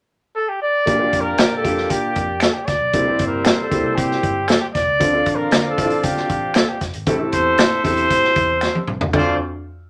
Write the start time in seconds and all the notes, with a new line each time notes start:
0.35 A4
0.49 G4
0.62 D5
0.86 A#1 A#2 A#3 D4 F4 G4 D5, kick, closed hi-hat
0.99 A#3 D4 F4 G4
1.13 F2, kick, closed hi-hat
1.21 A#4
1.38 A#2, finger snap, snare, closed hi-hat
1.57 A4
1.64 F2 A#3 D4 F4 G4, kick, closed hi-hat
1.78 snare
1.90 A#2 G4, kick, closed hi-hat
2.16 F2, kick, closed hi-hat
2.40 A4, finger snap, snare, closed hi-hat
2.54 G4
2.66 D2 D5, kick, snare, closed hi-hat
2.81 B1
2.93 C2 C3 G3 A#3 C4 E4 G4 C5, kick, closed hi-hat
3.05 A#3 C4 E4 G4
3.19 G1, kick, closed hi-hat
3.27 A#4
3.45 finger snap, snare, closed hi-hat
3.62 A4
3.70 D2 A#3 C4 E4 G4, kick, closed hi-hat
3.84 C2
3.96 C3 G4, kick, closed hi-hat
4.11 snare
4.23 G1, kick, closed hi-hat
4.48 A4, finger snap, snare, closed hi-hat
4.61 G4
4.74 E1 D5, kick, snare, closed hi-hat
4.87 C#2
5.00 D2 D3 C4 D4 F4 A4 D5, kick, closed hi-hat
5.13 C4 D4 F4 A4
5.26 A1, kick, closed hi-hat
5.36 A#4
5.51 D3, finger snap, snare, closed hi-hat
5.70 A4
5.78 A1 C4 D4 E4 A4, kick, closed hi-hat
5.85 F4
5.90 closed hi-hat
6.03 D3 G4, kick, closed hi-hat
6.17 snare
6.30 A1, kick, closed hi-hat
6.54 A4, finger snap, snare, closed hi-hat
6.69 G4
6.81 F1, kick, snare, closed hi-hat
6.94 G#1, closed hi-hat
7.07 A1 A2 C4 E4 G4 A4 E5, kick, closed hi-hat
7.19 C4 E4 G4 A4
7.33 E2 C5, kick, closed hi-hat
7.58 A2, finger snap, snare, closed hi-hat
7.84 E2 C4 E4 G4 A4 C5, kick, closed hi-hat
7.97 closed hi-hat
8.10 A2, kick, closed hi-hat
8.24 snare
8.36 E2, kick, closed hi-hat
8.61 finger snap, snare
8.75 high tom
8.87 C2, mid tom
9.01 C#2, floor tom
9.13 D2 A3 C4 D4 F4 A4 C5 D5, finger snap, kick, floor tom